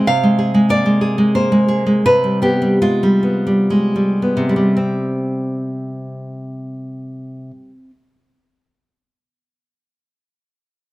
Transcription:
0.07 2.01 C3 medium
0.07 0.68 F5 medium
0.23 0.53 G#3 soft
0.39 1.00 G#4 soft
0.54 0.85 G#3 soft
0.69 1.34 A#3 soft
0.69 1.32 D5 medium
0.86 1.17 G#3 soft
1.01 1.67 G#4 soft
1.18 1.51 G#3 soft
1.35 2.05 A#3 soft
1.35 2.02 C5 medium
1.52 1.85 G#3 soft
1.68 2.04 G#4 soft
1.86 2.04 G#3 soft
2.06 4.35 C3 medium
2.06 2.40 B4 medium
2.24 2.60 G3 soft
2.42 3.22 B3 soft
2.42 2.79 G4 medium
2.62 2.81 G3 soft
2.82 3.46 G#3 soft
2.82 4.71 F4 medium
3.03 3.45 G3 soft
3.23 4.21 B3 soft
3.47 3.94 G3 soft
3.70 4.75 G#3 soft
3.96 4.48 G3 soft
4.22 4.75 B3 soft
4.37 7.50 C3 soft
4.49 4.55 G3 soft
4.56 7.70 G3 soft
4.77 7.90 C4 soft

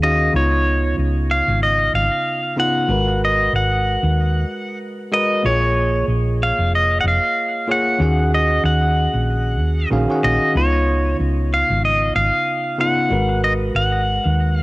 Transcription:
0.00 0.29 D#2 medium
0.00 0.31 D#3 medium
0.00 0.31 C#4 medium
0.00 0.32 F#4 medium
0.00 0.31 G#4 medium
0.00 0.36 D#5 loud
0.00 0.32 F5 medium
0.33 0.92 C#2 medium
0.33 2.54 C#3 medium
0.33 2.54 B3 medium
0.33 2.55 D#4 medium
0.33 2.55 F4 medium
0.33 0.95 C#5 medium
0.98 1.40 C#2 medium
1.31 1.60 F5 medium
1.48 1.88 G#1 medium
1.63 1.95 D#5 medium
1.93 2.07 G#1 medium
1.93 2.59 F5 loud
2.56 2.86 C#3 medium
2.56 2.86 B3 medium
2.56 2.86 D#4 medium
2.56 2.87 F4 medium
2.56 3.24 F#5 loud
2.88 3.47 G#1 loud
2.88 5.09 G#3 medium
2.88 5.09 F#4 medium
2.88 5.10 A#4 medium
2.88 5.11 B4 medium
3.25 3.55 D#5 medium
3.53 3.96 G#1 medium
3.53 4.78 F#5 medium
4.03 4.43 D#2 medium
5.12 5.41 G#3 medium
5.12 5.41 F#4 medium
5.12 5.42 A#4 medium
5.12 5.42 B4 medium
5.12 5.46 D#5 loud
5.43 6.03 A#1 loud
5.43 7.64 A#3 medium
5.43 7.65 F4 medium
5.43 7.65 G#4 medium
5.43 6.05 C#5 loud
5.47 7.66 C#5 medium
6.08 6.51 A#1 medium
6.43 6.75 F5 medium
6.58 6.98 F1 medium
6.75 7.00 D#5 medium
7.01 7.18 F1 medium
7.01 7.05 F#5 medium
7.08 7.71 F5 loud
7.67 7.96 A#3 medium
7.67 7.97 F4 medium
7.67 7.97 G#4 medium
7.67 7.97 C#5 medium
7.71 8.34 F#5 loud
7.99 8.58 D#2 loud
7.99 9.88 D#3 medium
7.99 9.88 C#4 medium
7.99 9.89 F#4 medium
7.99 9.89 G#4 medium
7.99 9.90 F#5 medium
8.34 8.65 D#5 medium
8.64 9.06 D#2 medium
8.64 9.88 F#5 medium
9.14 9.60 A#1 medium
9.60 9.84 D#2 medium
9.91 10.05 A#1 loud
9.91 10.05 D#3 medium
9.91 10.05 C#4 medium
9.91 10.06 F#4 medium
9.91 10.06 G#4 medium
9.91 10.06 F5 loud
10.09 10.52 D#3 medium
10.09 10.52 C#4 medium
10.09 10.52 F#4 medium
10.09 10.52 G#4 medium
10.09 10.53 F#5 medium
10.24 10.37 A#1 medium
10.24 10.57 D#5 loud
10.55 11.13 C#2 loud
10.55 12.75 C#3 medium
10.55 12.76 B3 medium
10.55 12.76 D#4 medium
10.55 12.77 F4 medium
10.55 11.16 C#5 medium
11.20 11.62 C#2 medium
11.54 11.82 F5 medium
11.70 12.10 G#1 medium
11.85 12.15 D#5 medium
12.15 12.29 G#1 medium
12.15 12.80 F5 loud
12.78 13.07 C#3 medium
12.78 13.07 B3 medium
12.78 13.08 D#4 medium
12.78 13.08 F4 medium
12.78 13.44 F#5 loud
13.09 13.69 G#1 loud
13.09 14.63 G#3 medium
13.09 14.63 F#4 medium
13.09 14.63 A#4 medium
13.09 14.63 B4 medium
13.44 13.52 D#5 medium
13.75 14.17 G#1 medium
13.75 14.57 F#5 medium
14.25 14.63 D#2 medium
14.57 14.63 F5 medium

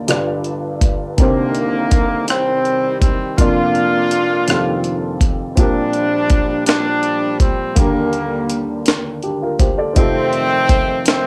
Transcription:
0.00 0.08 F4 soft
0.00 0.10 D5 medium
0.00 0.10 D#5 medium
0.07 1.14 G1 medium
0.07 1.15 G2 medium
0.07 1.16 D4 medium
0.07 1.18 F4 medium
0.07 1.18 G4 soft
0.07 1.19 B4 medium
0.07 1.19 D5 medium
0.07 cross-stick medium
0.07 closed hi-hat medium
0.44 closed hi-hat soft
0.81 kick medium
0.81 closed hi-hat medium
1.17 3.35 C2 medium
1.17 3.35 C3 medium
1.17 2.25 D3 medium
1.17 2.25 D#3 medium
1.17 2.25 A#3 medium
1.17 3.34 C4 medium
1.17 3.33 D4 medium
1.17 3.35 G4 soft
1.17 kick loud
1.17 closed hi-hat medium
1.21 3.36 A#4 soft
1.21 3.36 C5 medium
1.55 closed hi-hat soft
1.91 kick medium
1.91 closed hi-hat medium
2.28 3.35 D#3 medium
2.28 3.36 G3 medium
2.28 2.98 C4 medium
2.28 cross-stick medium
2.28 closed hi-hat medium
2.65 closed hi-hat soft
3.01 3.35 C4 medium
3.01 kick medium
3.01 closed hi-hat medium
3.38 4.45 F1 medium
3.38 4.44 F2 soft
3.38 4.48 A#3 medium
3.38 5.18 A#3 medium
3.38 4.48 D4 medium
3.38 5.18 D4 medium
3.38 5.21 F4 medium
3.38 4.47 F4 soft
3.38 4.49 A#4 medium
3.38 4.49 D5 medium
3.38 kick medium
3.38 closed hi-hat medium
3.75 closed hi-hat soft
4.11 closed hi-hat medium
4.47 5.54 F1 medium
4.47 5.54 F2 medium
4.47 5.58 D#3 soft
4.47 5.54 C4 medium
4.47 5.56 F4 medium
4.47 5.58 G4 medium
4.47 5.59 A4 medium
4.47 cross-stick medium
4.47 closed hi-hat medium
4.84 closed hi-hat soft
5.21 kick medium
5.21 closed hi-hat medium
5.55 7.73 A#1 medium
5.55 7.73 A#2 medium
5.55 7.72 C4 medium
5.55 7.73 D4 soft
5.55 6.64 D4 medium
5.55 7.73 F4 soft
5.55 7.74 G4 medium
5.55 kick medium
5.55 closed hi-hat medium
5.59 6.64 F3 medium
5.59 6.65 G3 medium
5.59 7.75 A#4 medium
5.93 closed hi-hat soft
6.30 kick medium
6.30 closed hi-hat medium
6.66 7.74 F3 medium
6.66 7.74 G3 medium
6.66 7.36 D4 medium
6.66 snare loud
6.66 closed hi-hat medium
7.03 closed hi-hat soft
7.40 7.77 C4 medium
7.40 kick medium
7.40 closed hi-hat medium
7.75 9.92 D#2 medium
7.75 9.92 D3 medium
7.75 8.83 G3 soft
7.75 9.91 A#3 medium
7.75 8.59 A#3 medium
7.75 9.20 D4 soft
7.75 kick medium
7.75 closed hi-hat medium
7.79 8.84 D3 soft
7.79 9.21 G4 soft
7.79 9.22 A#4 medium
8.13 closed hi-hat soft
8.50 closed hi-hat medium
8.86 snare medium
8.86 closed hi-hat medium
9.23 9.41 D4 soft
9.23 9.41 G4 soft
9.23 closed hi-hat soft
9.42 9.59 F4 soft
9.42 9.59 A#4 medium
9.60 9.77 G4 soft
9.60 9.77 C5 medium
9.60 kick medium
9.60 closed hi-hat medium
9.78 9.97 A4 soft
9.78 10.13 D5 medium
9.93 11.27 F1 medium
9.93 11.27 F2 medium
9.93 11.27 C4 medium
9.93 11.27 D#4 medium
9.93 11.27 F4 medium
9.93 11.27 G4 soft
9.93 kick loud
9.93 closed hi-hat medium
9.98 11.03 D#3 medium
9.98 11.03 A3 medium
9.98 11.03 C4 loud
9.98 11.27 A4 medium
10.33 closed hi-hat soft
10.69 kick medium
10.69 closed hi-hat medium
11.06 11.27 D#3 medium
11.06 11.27 A3 medium
11.06 11.27 C4 medium
11.06 snare medium
11.06 closed hi-hat medium

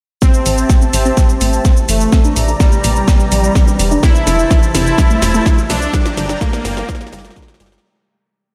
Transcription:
0.22 7.89 C3 medium
0.22 7.89 E3 medium
0.22 0.27 A3 medium
0.22 0.84 C4 loud
0.22 2.11 G4 medium
0.22 2.11 C5 medium
0.22 2.11 E5 medium
0.22 2.11 A5 medium
0.22 kick loud
0.22 snare soft
0.22 riser medium
0.22 shaker medium
0.34 shaker soft
0.46 0.64 A1 loud
0.46 0.57 E3 medium
0.46 open hi-hat loud
0.46 shaker medium
0.58 shaker soft
0.70 0.75 A3 medium
0.70 kick loud
0.70 snare medium
0.70 shaker medium
0.81 0.90 C4 loud
0.81 shaker soft
0.93 1.12 A1 medium
0.93 1.79 C4 medium
0.93 open hi-hat loud
0.93 shaker medium
1.05 1.11 C4 loud
1.05 shaker soft
1.17 kick loud
1.17 snare soft
1.17 shaker medium
1.29 1.38 G3 medium
1.29 shaker soft
1.41 1.59 A1 medium
1.41 1.52 A3 medium
1.41 open hi-hat loud
1.41 shaker medium
1.53 shaker soft
1.65 1.70 A3 medium
1.65 kick loud
1.65 snare soft
1.65 shaker medium
1.77 shaker soft
1.89 2.07 G1 loud
1.89 2.00 E3 medium
1.89 2.51 A3 medium
1.89 open hi-hat loud
1.89 shaker medium
2.01 shaker soft
2.12 2.18 C4 medium
2.12 4.01 D5 medium
2.12 4.01 A#5 medium
2.12 kick loud
2.12 snare medium
2.12 shaker medium
2.24 2.33 D4 loud
2.24 shaker soft
2.36 2.54 A#1 loud
2.36 open hi-hat loud
2.36 shaker medium
2.48 2.54 D4 medium
2.48 shaker soft
2.60 3.94 G3 loud
2.60 kick loud
2.60 snare medium
2.60 shaker medium
2.72 2.81 A3 medium
2.72 shaker soft
2.84 3.02 A#1 medium
2.84 2.95 A#3 medium
2.84 open hi-hat loud
2.84 shaker medium
2.96 shaker soft
3.08 3.13 A#3 medium
3.08 kick loud
3.08 snare medium
3.08 shaker medium
3.20 shaker soft
3.32 3.50 A#1 medium
3.32 3.43 F3 medium
3.32 open hi-hat loud
3.32 shaker medium
3.44 shaker soft
3.55 3.61 C4 medium
3.55 kick loud
3.55 snare medium
3.55 shaker medium
3.67 3.76 D4 medium
3.67 shaker soft
3.79 3.97 F1 medium
3.79 open hi-hat loud
3.79 shaker medium
3.91 3.96 D4 loud
3.91 shaker soft
4.03 4.65 E4 loud
4.03 5.92 C5 medium
4.03 5.92 E5 medium
4.03 5.92 A5 medium
4.03 kick loud
4.03 snare medium
4.03 shaker medium
4.15 4.24 E3 medium
4.15 shaker soft
4.27 4.45 F1 loud
4.27 4.38 F3 medium
4.27 snare medium
4.27 open hi-hat loud
4.27 shaker medium
4.39 shaker soft
4.51 4.56 F3 medium
4.51 kick loud
4.51 snare medium
4.51 shaker medium
4.63 shaker soft
4.74 4.93 F1 loud
4.74 4.86 C3 medium
4.74 5.60 E4 loud
4.74 snare medium
4.74 open hi-hat loud
4.74 shaker medium
4.87 shaker soft
4.98 5.04 G3 medium
4.98 kick loud
4.98 snare medium
4.98 shaker medium
5.10 5.19 A3 loud
5.10 shaker soft
5.22 5.40 F1 loud
5.22 snare medium
5.22 open hi-hat loud
5.22 shaker medium
5.34 5.39 A3 loud
5.34 shaker soft
5.46 kick loud
5.46 snare medium
5.46 shaker medium
5.58 5.67 E3 medium
5.58 shaker soft
5.70 5.88 C2 medium
5.70 5.81 F3 medium
5.70 6.32 D4 loud
5.70 snare medium
5.70 open hi-hat loud
5.70 shaker medium
5.82 shaker soft
5.93 5.99 G3 medium
5.93 7.82 D5 medium
5.93 7.82 G5 medium
5.93 7.82 A#5 medium
5.93 kick loud
5.93 snare medium
5.93 shaker medium
6.06 snare medium
6.06 shaker soft
6.17 6.35 G1 loud
6.17 6.29 D3 medium
6.17 snare medium
6.17 open hi-hat loud
6.17 shaker medium
6.29 snare medium
6.29 shaker soft
6.41 6.46 A3 medium
6.41 7.74 A#3 loud
6.41 kick loud
6.41 snare medium
6.41 shaker medium
6.53 6.62 A#3 loud
6.53 snare medium
6.53 shaker soft
6.65 6.83 G1 medium
6.65 snare loud
6.65 open hi-hat loud
6.65 shaker medium
6.77 6.82 A#3 loud
6.77 snare medium
6.77 shaker soft
6.89 kick loud
6.89 snare loud
6.89 shaker medium
6.95 snare medium
7.01 7.10 F3 medium
7.01 snare medium
7.01 shaker soft
7.07 snare medium
7.12 7.31 G1 medium
7.12 7.21 G3 loud
7.12 snare loud
7.12 open hi-hat loud
7.12 shaker medium
7.19 snare medium
7.25 snare medium
7.25 shaker soft
7.30 snare medium
7.36 7.48 D3 loud
7.36 kick loud
7.36 snare loud
7.36 shaker medium
7.42 snare medium
7.48 snare medium
7.48 shaker soft
7.54 snare loud
7.60 7.78 G1 loud
7.60 7.69 G3 loud
7.60 snare loud
7.60 open hi-hat loud
7.60 shaker medium
7.66 snare loud
7.72 snare loud
7.72 shaker soft
7.78 snare loud

